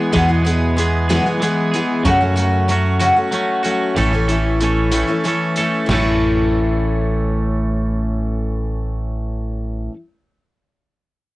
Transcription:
Already playing: E2 E3 G#3 B3 G#4
0.12 E2 B2 E3 G#3 B3 G#4, kick, closed hi-hat
0.29 E3 G#3 B3 G#4
0.45 E3 G#3 B3 G#4, closed hi-hat
0.77 E3 G#3 B3 G#4, closed hi-hat
1.09 E2 B2 E3 G#3 B3 G#4, snare, closed hi-hat
1.26 E3 G#3 B3 G#4
1.42 E3 G#3 B3 G#4, closed hi-hat
1.71 E3 G#3 B3 G#4, closed hi-hat
1.76 G#4
2.05 F#2 C#3 F#3 A3 C#4 F#4, kick, closed hi-hat
2.20 F#3 A3 C#4 F#4
2.36 F#3 A3 C#4 F#4, closed hi-hat
2.68 F#3 A3 C#4 F#4, closed hi-hat
3.00 F#2 C#3 F#3 A3 C#4 F#4, closed hi-hat
3.16 F#3 A3 C#4 F#4
3.32 F#3 A3 C#4 F#4, closed hi-hat
3.63 F#3 A3 C#4 F#4, closed hi-hat
3.96 A1 A2 E3 A3 C#4 E4 A4, kick, closed hi-hat
4.13 A3 C#4 E4
4.28 E3 A3 C#4 E4 A4, closed hi-hat
4.61 E3 A3 C#4 E4 A4, closed hi-hat
4.91 A2 E3 A3 C#4 E4 A4, closed hi-hat
4.97 A3
5.07 A3 C#4 E4
5.24 E3 A3 C#4 E4, closed hi-hat
5.28 A4
5.56 E3 A3 C#4 E4 A4, closed hi-hat
5.86 A1 A2 E3, snare, floor tom, crash
5.91 A3 C#4 E4 A4

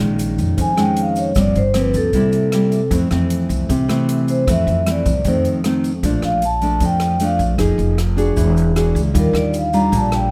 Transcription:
Already playing: A#2
0.00 A#1 D#3 G#3 C#4
0.19 closed hi-hat, shaker
0.38 F2, closed hi-hat, shaker
0.57 F2 G#5, kick, closed hi-hat, shaker
0.76 D#3 G#3 C#4 G5, cross-stick, closed hi-hat, shaker
0.97 closed hi-hat
1.02 F5
1.16 C#5, closed hi-hat, shaker
1.35 G1 G2 F3 A#3 C4, kick, cross-stick, closed hi-hat, shaker
1.40 D5
1.55 G1 C5, closed hi-hat, shaker
1.74 F3 A#3 C4, cross-stick, closed hi-hat, shaker
1.79 B4
1.94 D2 A4, closed hi-hat, shaker
2.13 C2 C3 G3 A#3 E4, kick, closed hi-hat, shaker
2.32 closed hi-hat, shaker
2.52 G3 A#3 E4, cross-stick, closed hi-hat
2.72 closed hi-hat, shaker
2.91 F2 E3 A3 C4, kick, closed hi-hat, shaker
3.11 F2 E3 A3 C4, cross-stick, closed hi-hat, shaker
3.30 closed hi-hat
3.49 C2, closed hi-hat, shaker
3.69 C2 C3, kick, closed hi-hat, shaker
3.88 E3 A3 C4, cross-stick, closed hi-hat, shaker
4.09 closed hi-hat
4.28 C5, closed hi-hat, shaker
4.47 F2 E3 A3 C4 E5, kick, cross-stick, closed hi-hat, shaker
4.67 F2, closed hi-hat, shaker
4.86 E3 A3 C4, cross-stick, closed hi-hat
4.91 D5
5.06 C2, kick, closed hi-hat, shaker
5.24 F2 D#3 A3 C4 C5, kick, closed hi-hat, shaker
5.45 closed hi-hat, shaker
5.64 D#3 A3 C4, cross-stick, closed hi-hat
5.84 closed hi-hat, shaker
6.03 A#1 A#2 F3 A3 D4, kick, closed hi-hat, shaker
6.22 A#1 F5, cross-stick, closed hi-hat, shaker
6.42 A5, closed hi-hat, shaker
6.61 F3 A3 D4, closed hi-hat, shaker
6.80 F2, kick, closed hi-hat, shaker
6.85 G5
7.00 cross-stick, closed hi-hat, shaker
7.20 F3 A3 D4, closed hi-hat, shaker
7.24 F5
7.39 A#1, closed hi-hat, shaker
7.58 F1 F3 A#3 D#4 G#4, kick, cross-stick, closed hi-hat, shaker
7.78 F1, closed hi-hat, shaker
7.98 cross-stick, closed hi-hat
8.17 D4 F#4 G#4, closed hi-hat, shaker
8.36 E1 E3, kick, closed hi-hat, shaker
8.56 closed hi-hat, shaker
8.75 D4 F#4 G#4, cross-stick, closed hi-hat, shaker
8.95 C#2, closed hi-hat, shaker
9.14 D#2 D#3 G3 D4 F4, kick, closed hi-hat, shaker
9.19 A#4
9.33 D#2 D5, cross-stick, closed hi-hat, shaker
9.54 closed hi-hat, shaker
9.58 F5
9.73 G3 D4 F4 A#5, closed hi-hat, shaker
9.92 A#1 A#2, kick, closed hi-hat, shaker
9.96 A5
10.12 G5, cross-stick, closed hi-hat, shaker

